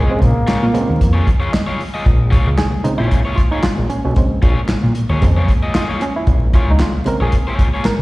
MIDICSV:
0, 0, Header, 1, 7, 480
1, 0, Start_track
1, 0, Key_signature, -5, "minor"
1, 0, Tempo, 526778
1, 1875, Time_signature, 4, 2, 24, 8
1, 7306, End_track
2, 0, Start_track
2, 0, Title_t, "Overdriven electric guitar"
2, 0, Program_c, 0, 29
2, 0, Note_on_c, 0, 65, 88
2, 0, Note_on_c, 0, 68, 92
2, 0, Note_on_c, 0, 73, 99
2, 91, Note_off_c, 0, 65, 0
2, 92, Note_off_c, 0, 68, 0
2, 95, Note_off_c, 0, 73, 0
2, 427, Note_on_c, 0, 65, 75
2, 431, Note_on_c, 0, 68, 86
2, 440, Note_on_c, 0, 73, 79
2, 573, Note_off_c, 0, 65, 0
2, 575, Note_off_c, 0, 68, 0
2, 580, Note_off_c, 0, 73, 0
2, 1031, Note_on_c, 0, 73, 75
2, 1038, Note_on_c, 0, 65, 61
2, 1041, Note_on_c, 0, 68, 73
2, 1156, Note_off_c, 0, 73, 0
2, 1160, Note_off_c, 0, 65, 0
2, 1161, Note_off_c, 0, 68, 0
2, 1275, Note_on_c, 0, 73, 55
2, 1280, Note_on_c, 0, 68, 52
2, 1284, Note_on_c, 0, 65, 49
2, 1372, Note_off_c, 0, 73, 0
2, 1374, Note_off_c, 0, 68, 0
2, 1376, Note_off_c, 0, 65, 0
2, 1519, Note_on_c, 0, 73, 80
2, 1526, Note_on_c, 0, 68, 76
2, 1529, Note_on_c, 0, 65, 64
2, 1641, Note_off_c, 0, 73, 0
2, 1644, Note_off_c, 0, 68, 0
2, 1646, Note_off_c, 0, 65, 0
2, 1768, Note_on_c, 0, 75, 63
2, 1774, Note_on_c, 0, 68, 59
2, 1775, Note_on_c, 0, 65, 43
2, 1858, Note_off_c, 0, 75, 0
2, 1861, Note_off_c, 0, 65, 0
2, 1861, Note_off_c, 0, 68, 0
2, 2101, Note_on_c, 0, 65, 77
2, 2105, Note_on_c, 0, 68, 93
2, 2111, Note_on_c, 0, 73, 96
2, 2251, Note_off_c, 0, 65, 0
2, 2253, Note_off_c, 0, 68, 0
2, 2256, Note_off_c, 0, 73, 0
2, 2719, Note_on_c, 0, 73, 83
2, 2728, Note_on_c, 0, 68, 76
2, 2734, Note_on_c, 0, 65, 66
2, 2901, Note_off_c, 0, 73, 0
2, 2905, Note_off_c, 0, 68, 0
2, 2908, Note_off_c, 0, 65, 0
2, 2964, Note_on_c, 0, 73, 94
2, 2972, Note_on_c, 0, 68, 81
2, 2978, Note_on_c, 0, 65, 69
2, 3084, Note_off_c, 0, 73, 0
2, 3088, Note_off_c, 0, 68, 0
2, 3091, Note_off_c, 0, 65, 0
2, 3209, Note_on_c, 0, 73, 62
2, 3219, Note_on_c, 0, 68, 54
2, 3222, Note_on_c, 0, 65, 46
2, 3299, Note_off_c, 0, 73, 0
2, 3304, Note_off_c, 0, 68, 0
2, 3306, Note_off_c, 0, 65, 0
2, 4029, Note_on_c, 0, 65, 77
2, 4035, Note_on_c, 0, 68, 80
2, 4041, Note_on_c, 0, 73, 93
2, 4176, Note_off_c, 0, 65, 0
2, 4179, Note_off_c, 0, 68, 0
2, 4182, Note_off_c, 0, 73, 0
2, 4646, Note_on_c, 0, 73, 94
2, 4652, Note_on_c, 0, 68, 72
2, 4657, Note_on_c, 0, 65, 75
2, 4765, Note_off_c, 0, 73, 0
2, 4768, Note_off_c, 0, 68, 0
2, 4771, Note_off_c, 0, 65, 0
2, 4891, Note_on_c, 0, 73, 74
2, 4893, Note_on_c, 0, 68, 63
2, 4901, Note_on_c, 0, 65, 60
2, 5007, Note_off_c, 0, 73, 0
2, 5008, Note_off_c, 0, 68, 0
2, 5012, Note_off_c, 0, 65, 0
2, 5128, Note_on_c, 0, 75, 59
2, 5132, Note_on_c, 0, 68, 53
2, 5140, Note_on_c, 0, 65, 46
2, 5219, Note_off_c, 0, 75, 0
2, 5221, Note_off_c, 0, 68, 0
2, 5222, Note_off_c, 0, 65, 0
2, 5233, Note_on_c, 0, 65, 58
2, 5234, Note_on_c, 0, 68, 67
2, 5237, Note_on_c, 0, 75, 65
2, 5348, Note_off_c, 0, 65, 0
2, 5349, Note_off_c, 0, 68, 0
2, 5350, Note_off_c, 0, 75, 0
2, 5368, Note_on_c, 0, 73, 88
2, 5379, Note_on_c, 0, 65, 76
2, 5379, Note_on_c, 0, 68, 76
2, 5485, Note_off_c, 0, 73, 0
2, 5491, Note_off_c, 0, 65, 0
2, 5491, Note_off_c, 0, 68, 0
2, 5962, Note_on_c, 0, 65, 86
2, 5968, Note_on_c, 0, 68, 87
2, 5973, Note_on_c, 0, 73, 101
2, 6101, Note_off_c, 0, 65, 0
2, 6104, Note_off_c, 0, 68, 0
2, 6107, Note_off_c, 0, 73, 0
2, 6564, Note_on_c, 0, 73, 83
2, 6570, Note_on_c, 0, 68, 80
2, 6579, Note_on_c, 0, 65, 72
2, 6682, Note_off_c, 0, 73, 0
2, 6685, Note_off_c, 0, 68, 0
2, 6690, Note_off_c, 0, 65, 0
2, 6808, Note_on_c, 0, 73, 79
2, 6816, Note_on_c, 0, 68, 78
2, 6822, Note_on_c, 0, 65, 71
2, 6983, Note_off_c, 0, 73, 0
2, 6987, Note_off_c, 0, 68, 0
2, 6990, Note_off_c, 0, 65, 0
2, 7051, Note_on_c, 0, 73, 59
2, 7061, Note_on_c, 0, 68, 61
2, 7064, Note_on_c, 0, 65, 48
2, 7138, Note_off_c, 0, 73, 0
2, 7143, Note_off_c, 0, 68, 0
2, 7145, Note_off_c, 0, 65, 0
2, 7306, End_track
3, 0, Start_track
3, 0, Title_t, "Clav"
3, 0, Program_c, 1, 7
3, 87, Note_on_c, 1, 48, 51
3, 90, Note_on_c, 1, 53, 62
3, 93, Note_on_c, 1, 56, 62
3, 97, Note_on_c, 1, 60, 74
3, 138, Note_off_c, 1, 48, 0
3, 148, Note_on_c, 1, 49, 77
3, 435, Note_off_c, 1, 53, 0
3, 437, Note_off_c, 1, 56, 0
3, 439, Note_off_c, 1, 60, 0
3, 464, Note_off_c, 1, 49, 0
3, 670, Note_on_c, 1, 49, 69
3, 671, Note_on_c, 1, 53, 63
3, 674, Note_on_c, 1, 56, 73
3, 679, Note_on_c, 1, 59, 66
3, 737, Note_on_c, 1, 60, 77
3, 741, Note_off_c, 1, 59, 0
3, 1261, Note_off_c, 1, 49, 0
3, 1262, Note_off_c, 1, 53, 0
3, 1263, Note_off_c, 1, 56, 0
3, 1295, Note_off_c, 1, 60, 0
3, 1390, Note_on_c, 1, 75, 65
3, 1839, Note_off_c, 1, 75, 0
3, 2350, Note_on_c, 1, 68, 103
3, 2588, Note_on_c, 1, 63, 87
3, 2590, Note_on_c, 1, 49, 59
3, 2598, Note_on_c, 1, 56, 50
3, 2601, Note_off_c, 1, 68, 0
3, 2603, Note_on_c, 1, 60, 57
3, 2715, Note_on_c, 1, 64, 94
3, 2731, Note_off_c, 1, 63, 0
3, 3058, Note_on_c, 1, 65, 82
3, 3079, Note_off_c, 1, 64, 0
3, 3200, Note_on_c, 1, 63, 75
3, 3206, Note_off_c, 1, 65, 0
3, 3305, Note_on_c, 1, 65, 89
3, 3315, Note_off_c, 1, 63, 0
3, 3549, Note_on_c, 1, 61, 77
3, 3558, Note_off_c, 1, 65, 0
3, 3677, Note_off_c, 1, 61, 0
3, 3688, Note_on_c, 1, 61, 64
3, 3783, Note_off_c, 1, 49, 0
3, 3789, Note_off_c, 1, 56, 0
3, 3793, Note_off_c, 1, 60, 0
3, 3794, Note_on_c, 1, 49, 53
3, 3800, Note_on_c, 1, 56, 53
3, 3804, Note_on_c, 1, 60, 63
3, 3913, Note_off_c, 1, 61, 0
3, 4740, Note_off_c, 1, 49, 0
3, 4742, Note_off_c, 1, 56, 0
3, 4749, Note_off_c, 1, 60, 0
3, 4751, Note_on_c, 1, 49, 49
3, 4753, Note_on_c, 1, 56, 46
3, 4760, Note_on_c, 1, 60, 60
3, 4970, Note_off_c, 1, 49, 0
3, 4971, Note_off_c, 1, 56, 0
3, 4975, Note_off_c, 1, 60, 0
3, 5244, Note_on_c, 1, 65, 82
3, 5464, Note_off_c, 1, 65, 0
3, 5486, Note_on_c, 1, 61, 81
3, 5615, Note_on_c, 1, 64, 89
3, 5619, Note_off_c, 1, 61, 0
3, 5934, Note_off_c, 1, 64, 0
3, 5968, Note_on_c, 1, 65, 87
3, 6100, Note_off_c, 1, 65, 0
3, 6112, Note_on_c, 1, 63, 96
3, 6208, Note_on_c, 1, 65, 92
3, 6209, Note_off_c, 1, 63, 0
3, 6425, Note_on_c, 1, 49, 57
3, 6432, Note_on_c, 1, 56, 48
3, 6438, Note_on_c, 1, 60, 59
3, 6446, Note_on_c, 1, 70, 104
3, 6448, Note_off_c, 1, 65, 0
3, 6578, Note_off_c, 1, 70, 0
3, 6579, Note_on_c, 1, 68, 84
3, 6759, Note_off_c, 1, 49, 0
3, 6762, Note_off_c, 1, 56, 0
3, 6766, Note_off_c, 1, 60, 0
3, 6797, Note_off_c, 1, 68, 0
3, 7154, Note_on_c, 1, 70, 100
3, 7306, Note_off_c, 1, 70, 0
3, 7306, End_track
4, 0, Start_track
4, 0, Title_t, "Trombone"
4, 0, Program_c, 2, 57
4, 0, Note_on_c, 2, 56, 100
4, 206, Note_on_c, 2, 58, 89
4, 220, Note_off_c, 2, 56, 0
4, 1161, Note_off_c, 2, 58, 0
4, 7306, End_track
5, 0, Start_track
5, 0, Title_t, "Tonewheel organ"
5, 0, Program_c, 3, 16
5, 1865, Note_on_c, 3, 53, 65
5, 1867, Note_on_c, 3, 56, 60
5, 1869, Note_on_c, 3, 58, 55
5, 7306, Note_off_c, 3, 53, 0
5, 7306, Note_off_c, 3, 56, 0
5, 7306, Note_off_c, 3, 58, 0
5, 7306, End_track
6, 0, Start_track
6, 0, Title_t, "Analog synth bass"
6, 0, Program_c, 4, 38
6, 200, Note_on_c, 4, 34, 104
6, 305, Note_off_c, 4, 34, 0
6, 439, Note_on_c, 4, 46, 51
6, 492, Note_off_c, 4, 46, 0
6, 572, Note_on_c, 4, 46, 94
6, 656, Note_off_c, 4, 46, 0
6, 815, Note_on_c, 4, 39, 75
6, 922, Note_on_c, 4, 41, 92
6, 936, Note_off_c, 4, 39, 0
6, 1112, Note_off_c, 4, 41, 0
6, 1874, Note_on_c, 4, 34, 94
6, 2176, Note_off_c, 4, 34, 0
6, 2247, Note_on_c, 4, 37, 77
6, 2333, Note_off_c, 4, 37, 0
6, 2595, Note_on_c, 4, 34, 43
6, 2649, Note_off_c, 4, 34, 0
6, 2730, Note_on_c, 4, 34, 76
6, 2815, Note_off_c, 4, 34, 0
6, 3314, Note_on_c, 4, 34, 53
6, 3368, Note_off_c, 4, 34, 0
6, 3442, Note_on_c, 4, 34, 97
6, 3531, Note_off_c, 4, 34, 0
6, 3690, Note_on_c, 4, 35, 105
6, 3775, Note_off_c, 4, 35, 0
6, 4034, Note_on_c, 4, 34, 98
6, 4143, Note_off_c, 4, 34, 0
6, 4278, Note_on_c, 4, 46, 47
6, 4331, Note_off_c, 4, 46, 0
6, 4404, Note_on_c, 4, 46, 95
6, 4492, Note_off_c, 4, 46, 0
6, 4641, Note_on_c, 4, 39, 79
6, 4730, Note_off_c, 4, 39, 0
6, 4760, Note_on_c, 4, 41, 84
6, 4951, Note_off_c, 4, 41, 0
6, 5716, Note_on_c, 4, 34, 93
6, 6016, Note_off_c, 4, 34, 0
6, 6084, Note_on_c, 4, 37, 85
6, 6171, Note_off_c, 4, 37, 0
6, 6428, Note_on_c, 4, 34, 42
6, 6483, Note_off_c, 4, 34, 0
6, 6563, Note_on_c, 4, 34, 76
6, 6650, Note_off_c, 4, 34, 0
6, 7145, Note_on_c, 4, 34, 46
6, 7201, Note_off_c, 4, 34, 0
6, 7306, End_track
7, 0, Start_track
7, 0, Title_t, "Drums"
7, 198, Note_on_c, 9, 36, 88
7, 201, Note_on_c, 9, 42, 64
7, 289, Note_off_c, 9, 36, 0
7, 292, Note_off_c, 9, 42, 0
7, 440, Note_on_c, 9, 38, 117
7, 440, Note_on_c, 9, 39, 89
7, 440, Note_on_c, 9, 42, 75
7, 531, Note_off_c, 9, 38, 0
7, 531, Note_off_c, 9, 39, 0
7, 531, Note_off_c, 9, 42, 0
7, 680, Note_on_c, 9, 42, 80
7, 771, Note_off_c, 9, 42, 0
7, 921, Note_on_c, 9, 36, 86
7, 922, Note_on_c, 9, 42, 106
7, 1012, Note_off_c, 9, 36, 0
7, 1013, Note_off_c, 9, 42, 0
7, 1157, Note_on_c, 9, 36, 99
7, 1162, Note_on_c, 9, 42, 88
7, 1249, Note_off_c, 9, 36, 0
7, 1253, Note_off_c, 9, 42, 0
7, 1402, Note_on_c, 9, 38, 125
7, 1402, Note_on_c, 9, 39, 103
7, 1405, Note_on_c, 9, 42, 93
7, 1493, Note_off_c, 9, 38, 0
7, 1493, Note_off_c, 9, 39, 0
7, 1496, Note_off_c, 9, 42, 0
7, 1644, Note_on_c, 9, 46, 70
7, 1735, Note_off_c, 9, 46, 0
7, 1877, Note_on_c, 9, 36, 101
7, 1879, Note_on_c, 9, 42, 77
7, 1968, Note_off_c, 9, 36, 0
7, 1970, Note_off_c, 9, 42, 0
7, 2116, Note_on_c, 9, 36, 94
7, 2118, Note_on_c, 9, 42, 64
7, 2207, Note_off_c, 9, 36, 0
7, 2210, Note_off_c, 9, 42, 0
7, 2355, Note_on_c, 9, 38, 122
7, 2355, Note_on_c, 9, 39, 94
7, 2355, Note_on_c, 9, 42, 74
7, 2446, Note_off_c, 9, 38, 0
7, 2446, Note_off_c, 9, 39, 0
7, 2446, Note_off_c, 9, 42, 0
7, 2593, Note_on_c, 9, 42, 81
7, 2684, Note_off_c, 9, 42, 0
7, 2837, Note_on_c, 9, 42, 97
7, 2840, Note_on_c, 9, 36, 87
7, 2929, Note_off_c, 9, 42, 0
7, 2931, Note_off_c, 9, 36, 0
7, 3076, Note_on_c, 9, 36, 95
7, 3078, Note_on_c, 9, 42, 80
7, 3167, Note_off_c, 9, 36, 0
7, 3169, Note_off_c, 9, 42, 0
7, 3311, Note_on_c, 9, 38, 113
7, 3311, Note_on_c, 9, 39, 109
7, 3314, Note_on_c, 9, 42, 97
7, 3402, Note_off_c, 9, 38, 0
7, 3402, Note_off_c, 9, 39, 0
7, 3405, Note_off_c, 9, 42, 0
7, 3551, Note_on_c, 9, 42, 66
7, 3643, Note_off_c, 9, 42, 0
7, 3791, Note_on_c, 9, 42, 78
7, 3795, Note_on_c, 9, 36, 114
7, 3882, Note_off_c, 9, 42, 0
7, 3886, Note_off_c, 9, 36, 0
7, 4032, Note_on_c, 9, 42, 69
7, 4035, Note_on_c, 9, 36, 89
7, 4123, Note_off_c, 9, 42, 0
7, 4126, Note_off_c, 9, 36, 0
7, 4270, Note_on_c, 9, 38, 104
7, 4270, Note_on_c, 9, 39, 104
7, 4271, Note_on_c, 9, 42, 70
7, 4361, Note_off_c, 9, 38, 0
7, 4361, Note_off_c, 9, 39, 0
7, 4362, Note_off_c, 9, 42, 0
7, 4510, Note_on_c, 9, 42, 75
7, 4601, Note_off_c, 9, 42, 0
7, 4755, Note_on_c, 9, 42, 94
7, 4759, Note_on_c, 9, 36, 89
7, 4846, Note_off_c, 9, 42, 0
7, 4850, Note_off_c, 9, 36, 0
7, 4995, Note_on_c, 9, 36, 98
7, 4998, Note_on_c, 9, 42, 79
7, 5087, Note_off_c, 9, 36, 0
7, 5089, Note_off_c, 9, 42, 0
7, 5237, Note_on_c, 9, 38, 121
7, 5237, Note_on_c, 9, 39, 109
7, 5239, Note_on_c, 9, 42, 103
7, 5328, Note_off_c, 9, 38, 0
7, 5328, Note_off_c, 9, 39, 0
7, 5330, Note_off_c, 9, 42, 0
7, 5476, Note_on_c, 9, 42, 64
7, 5567, Note_off_c, 9, 42, 0
7, 5713, Note_on_c, 9, 42, 77
7, 5715, Note_on_c, 9, 36, 121
7, 5804, Note_off_c, 9, 42, 0
7, 5806, Note_off_c, 9, 36, 0
7, 5955, Note_on_c, 9, 36, 84
7, 5955, Note_on_c, 9, 42, 68
7, 6046, Note_off_c, 9, 36, 0
7, 6046, Note_off_c, 9, 42, 0
7, 6193, Note_on_c, 9, 38, 115
7, 6193, Note_on_c, 9, 39, 102
7, 6193, Note_on_c, 9, 42, 73
7, 6284, Note_off_c, 9, 38, 0
7, 6284, Note_off_c, 9, 39, 0
7, 6284, Note_off_c, 9, 42, 0
7, 6431, Note_on_c, 9, 42, 80
7, 6522, Note_off_c, 9, 42, 0
7, 6670, Note_on_c, 9, 42, 95
7, 6677, Note_on_c, 9, 36, 79
7, 6761, Note_off_c, 9, 42, 0
7, 6768, Note_off_c, 9, 36, 0
7, 6914, Note_on_c, 9, 36, 98
7, 6915, Note_on_c, 9, 42, 86
7, 7005, Note_off_c, 9, 36, 0
7, 7006, Note_off_c, 9, 42, 0
7, 7152, Note_on_c, 9, 38, 127
7, 7152, Note_on_c, 9, 39, 101
7, 7155, Note_on_c, 9, 42, 96
7, 7244, Note_off_c, 9, 38, 0
7, 7244, Note_off_c, 9, 39, 0
7, 7246, Note_off_c, 9, 42, 0
7, 7306, End_track
0, 0, End_of_file